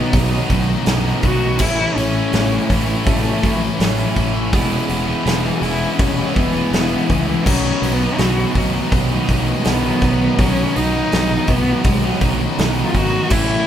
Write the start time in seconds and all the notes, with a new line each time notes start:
Already playing: B2 D#3 F#3 B3 C#4 D#4 F#4 D#5 B5
0.13 B1, kick, open hi-hat
0.30 F#3 B3 D#4
0.49 B1 D#3 F#3 B3 D#4, kick, open hi-hat
0.66 F#3 B3 D#4, muted distorted electric guitar stroke
0.85 B1 B2 D#3 F#3 B3 D#4, snare, open hi-hat
1.23 B1 D#3 F#3 B3 D#4 F#4, kick, open hi-hat
1.42 F#3 B3 D#4
1.59 A1 A2 E3 A3 C#4 E4 A4 E5, kick, crash
1.95 A1 E3 A3 C#4 E4, open hi-hat
2.13 A3 C#4 E4
2.32 A1 A2 E3 A3 C#4 E4, snare, open hi-hat
2.51 muted distorted electric guitar stroke
2.69 A1 E3 A3 C#4 E4, kick, open hi-hat
2.86 A3 C#4 E4
3.05 A1 A3, kick, open hi-hat
3.23 A3 C#4 E4
3.40 A1 E3 A3 C#4 E4, kick
3.44 open hi-hat
3.55 E3 E4
3.61 A3 C#4, muted distorted electric guitar stroke
3.78 A1 A2 E3 F#3 A3 C#4 E4, snare, open hi-hat
4.14 A1 E3 A3 C#4 E4, kick, open hi-hat
4.33 A3 C#4 E4
4.51 E1 E3 G#3 B3 E4 G#4, kick, open hi-hat
4.87 E1 E3 G#3 B3 E4, open hi-hat
5.06 G#3 B3 E4
5.23 E1 E3 G#3 B3 E4, open hi-hat
5.28 snare
5.45 muted distorted electric guitar stroke
5.56 F#4
5.60 E1 E3 G#3 B3 E4, open hi-hat
5.79 G#3 B3 E4
5.98 E1 C#4, kick, open hi-hat
6.16 G#3 B3 E4
6.34 E1 E3 G#3 B3 E4, kick, open hi-hat
6.54 G#3 B3 E4, muted distorted electric guitar stroke
6.71 E1 E3 G#3 B3 E4, snare, open hi-hat
7.07 C#2 E3 G#3 B3 E4, kick, open hi-hat
7.25 G#3 B3 E4
7.44 B1 B2 D#3 F#3 B3 C#4, kick, crash
7.48 D#4 F#4 D#5
7.80 B1 D#3 F#3 B3 D#4, open hi-hat
7.93 B3
7.98 F#3 B3 D#4
8.17 B1 B2 D#3 F#3 B3 D#4 F#4, snare, open hi-hat
8.39 muted distorted electric guitar stroke
8.53 B1 D#3 F#3 B3 D#4, kick, open hi-hat
8.74 F#3 B3 D#4
8.92 B1, kick, open hi-hat
9.11 F#3 B3 D#4
9.28 B1 D#3 F#3 B3 D#4, kick, open hi-hat
9.47 F#3 B3 D#4, muted distorted electric guitar stroke
9.64 B1 B2 D#3 F#3 B3 D#4, snare, open hi-hat
10.01 B1 D#3 F#3 B3 D#4, kick, open hi-hat
10.20 F#3 B3 D#4
10.38 B1 B2 D#3 F#3 B3 C#4 D#4, kick, open hi-hat
10.75 B1 D#3 F#3 B3 D#4, open hi-hat
10.80 D#4
10.93 F#3 B3 D#4
11.11 B1 B2 D#3 F#3 B3 D#4, snare, open hi-hat
11.30 muted distorted electric guitar stroke
11.47 B1 D#3 F#3 B3 D#4, kick, open hi-hat
11.64 B3 D#4
11.69 F#3
11.84 B1 G#3, kick, open hi-hat
12.02 F#3 B3 D#4
12.20 B1 D#3 F#3 B3, kick, open hi-hat
12.24 D#4
12.40 F#3 B3 D#4, muted distorted electric guitar stroke
12.58 B1 B2 D#3 F#3 B3 D#4, snare, open hi-hat
12.85 F4
12.94 G#1 D#3 F#3 B3 D#4 F#4, kick, open hi-hat
13.13 F#3 B3 D#4
13.29 A1 A2 E3 A3 C#4 E4 A4 E5 B5, kick, crash